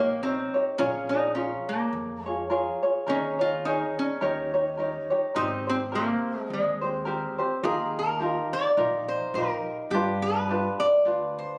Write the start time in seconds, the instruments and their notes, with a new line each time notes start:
Already playing: upright bass A#1, resonator guitar played with a steel bar A#3, ukulele A#4
0.00 ukulele D#4 G4 C#5
0.23 resonator guitar played with a steel bar C4, ukulele D#4 G4 A#4 C#5
0.54 ukulele D#4 G4 C#5
0.78 upright bass A#1, resonator guitar played with a steel bar C#4, ukulele F4 G#4 A#4 C#5
1.09 resonator guitar played with a steel bar D#4, ukulele F4 G#4 C#5
1.35 resonator guitar played with a steel bar C#4, ukulele F4 G#4 A#4 C#5
1.69 resonator guitar played with a steel bar A#3
1.93 upright bass F2
2.25 resonator guitar played with a steel bar G#3, ukulele F4 G#4 C#5
2.50 ukulele F4 G#4 A#4 C#5
2.83 ukulele F4 G#4 C#5
3.06 upright bass D#2, resonator guitar played with a steel bar C#4, ukulele D#4 G#4 A#4 C#5
3.39 ukulele D#4 G#4 C#5, resonator guitar played with a steel bar F4
3.65 resonator guitar played with a steel bar D#4, ukulele D#4 G#4 A#4 C#5
3.99 resonator guitar played with a steel bar C#4
4.21 upright bass D#2, ukulele D#4 G4 A#4 C#5
4.54 ukulele D#4 G4 C#5
4.77 ukulele D#4 G4 A#4 C#5
5.10 ukulele D#4 G4 C#5
5.34 upright bass G#1, ukulele C4 G4 A#4 C5, resonator guitar played with a steel bar D#4
5.67 ukulele C4 G4 C5, resonator guitar played with a steel bar C4
5.92 resonator guitar played with a steel bar A#3, ukulele C4 G4 A#4 C5
6.40 resonator guitar played with a steel bar G#3
6.50 upright bass D#2, resonator guitar played with a steel bar G#3
6.81 ukulele C4 G4 C5
7.05 ukulele C4 G4 A#4 C5
7.38 ukulele C4 G4 C5
7.63 upright bass D#2, ukulele D#4 F4 G4 A#4, resonator guitar played with a steel bar G#4
7.99 resonator guitar played with a steel bar A#4
8.20 ukulele D#4 F4 G4 A#4
8.53 resonator guitar played with a steel bar D5
8.77 upright bass A#1, ukulele D#4 F4 G4 A#4
9.08 resonator guitar played with a steel bar C5
9.34 upright bass A#1, ukulele D#4 F4 G4 A#4, resonator guitar played with a steel bar A#4
9.90 upright bass G2, ukulele D4 G4, resonator guitar played with a steel bar G4
9.94 ukulele F4 B4
10.22 resonator guitar played with a steel bar B4
10.49 ukulele D4 F4 G4 B4
10.80 resonator guitar played with a steel bar D5
11.05 upright bass D2, ukulele D4 F4 G4 B4
11.39 resonator guitar played with a steel bar C5